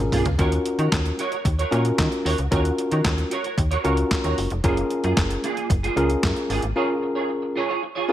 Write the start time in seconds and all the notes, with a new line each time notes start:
Already playing: C#4 F4 G#4 A#4
0.00 muted clean electric guitar stroke
0.12 B1 A#3 F4 G#4, mid tom, open hi-hat
0.25 C#2, muted clean electric guitar stroke, closed hi-hat, floor tom
0.38 D#2 C#4 F4 F#4 A#4 C#5, kick, closed hi-hat
0.52 muted clean electric guitar stroke, closed hi-hat
0.66 muted clean electric guitar stroke, closed hi-hat
0.79 D#3 F#4 A#4 C#5, closed hi-hat
0.92 D#2, kick, snare, clap, closed hi-hat
1.06 muted clean electric guitar stroke, closed hi-hat
1.19 F#4 A#4 C#5, closed hi-hat
1.32 F#4 A#4 C#5, closed hi-hat
1.45 D#2, muted clean electric guitar stroke, kick, closed hi-hat
1.59 F#4 A#4 C#5, closed hi-hat
1.71 A#2 C#4 F4 F#4 A#4 C#5, closed hi-hat
1.85 muted clean electric guitar stroke, closed hi-hat
1.99 D#3, kick, snare, clap, closed hi-hat
2.12 muted clean electric guitar stroke, closed hi-hat
2.25 D#2 F#4 A#4 C#5, open hi-hat
2.38 C#2, muted clean electric guitar stroke, closed hi-hat
2.51 D#2 C#4 F4 F#4 A#4 C#5, kick, closed hi-hat
2.65 muted clean electric guitar stroke, closed hi-hat
2.78 muted clean electric guitar stroke, closed hi-hat
2.91 D#3 F#4 A#4 C#5, closed hi-hat
3.05 D#2, muted clean electric guitar stroke, kick, snare, clap, closed hi-hat
3.18 muted clean electric guitar stroke, closed hi-hat
3.31 F#4 A#4 C#5, closed hi-hat
3.44 F#4 A#4 C#5, closed hi-hat
3.58 D#2, muted clean electric guitar stroke, kick, closed hi-hat
3.71 F#4 A#4 C#5, closed hi-hat
3.84 C#2 C#4 F4 F#4 A#4 C#5, closed hi-hat
3.97 muted clean electric guitar stroke, closed hi-hat
4.11 muted clean electric guitar stroke, kick, snare, clap, closed hi-hat
4.24 D#2 F#4 A#4 C#5, closed hi-hat
4.38 F#1, muted clean electric guitar stroke, open hi-hat
4.50 F1, muted clean electric guitar stroke, closed hi-hat
4.64 F#1 A#3 C#4 F4 G#4 A#4, kick, closed hi-hat
4.77 muted clean electric guitar stroke, closed hi-hat
4.90 muted clean electric guitar stroke, closed hi-hat
5.04 F#2 A#3 F4 G#4, closed hi-hat
5.17 F#1, muted clean electric guitar stroke, kick, snare, clap, closed hi-hat
5.30 muted clean electric guitar stroke, closed hi-hat
5.43 A#3 F4 G#4, closed hi-hat
5.57 A#3 F4 G#4, closed hi-hat
5.70 F#1, muted clean electric guitar stroke, kick, closed hi-hat
5.83 A#3 F4 G#4, closed hi-hat
5.96 C#2 A#3 C#4 F4 G#4 A#4, closed hi-hat
6.10 muted clean electric guitar stroke, closed hi-hat
6.23 F#2, kick, snare, clap, closed hi-hat
6.36 muted clean electric guitar stroke, closed hi-hat
6.49 G#1 A#3 F4 G#4, open hi-hat
6.62 G#1, muted clean electric guitar stroke, closed hi-hat
6.76 C#4 F4 G#4 A#4 C#5
6.89 muted clean electric guitar stroke
7.02 muted clean electric guitar stroke
7.15 F4 G#4 C#5
7.29 muted clean electric guitar stroke
7.42 muted clean electric guitar stroke
7.56 F4 G#4 C#5
7.69 F4 G#4 C#5
7.82 muted clean electric guitar stroke
7.95 F4 G#4 C#5
8.08 C#4 F4 G#4 A#4